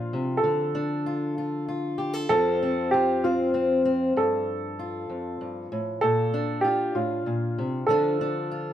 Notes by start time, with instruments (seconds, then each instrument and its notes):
Already playing: steel-string acoustic guitar A#2 F3 D4 F4, upright piano F4
0.13 steel-string acoustic guitar C3
0.37 upright piano A4
0.44 steel-string acoustic guitar D3
0.75 steel-string acoustic guitar D4
1.06 steel-string acoustic guitar F4
1.38 steel-string acoustic guitar F4
1.68 steel-string acoustic guitar F4
1.98 steel-string acoustic guitar G4
2.13 steel-string acoustic guitar A4
2.29 steel-string acoustic guitar F2 F3 C4 F4, upright piano A4
2.63 steel-string acoustic guitar C4
2.91 steel-string acoustic guitar F4, upright piano G4
3.24 steel-string acoustic guitar C4, upright piano F4
3.54 steel-string acoustic guitar C4
3.85 steel-string acoustic guitar C4
4.16 steel-string acoustic guitar G2, upright piano A4
4.79 steel-string acoustic guitar F4
5.10 steel-string acoustic guitar F2
5.41 steel-string acoustic guitar G2
5.72 steel-string acoustic guitar A2
6.01 steel-string acoustic guitar A#2, upright piano A4
6.34 steel-string acoustic guitar D4
6.61 steel-string acoustic guitar F4, upright piano G4
6.95 steel-string acoustic guitar A2, upright piano F4
7.26 steel-string acoustic guitar A#2
7.58 steel-string acoustic guitar C3
7.87 steel-string acoustic guitar D3 F3 D4, upright piano A4
7.91 steel-string acoustic guitar F4
8.21 steel-string acoustic guitar D4
8.52 steel-string acoustic guitar F4